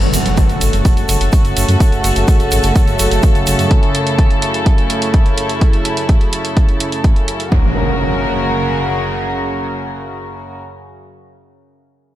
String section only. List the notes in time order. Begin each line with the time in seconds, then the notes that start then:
Already playing: C#3 A3 F#4 A4
3.71 E4
7.52 C#3 A#3 F#4 A#4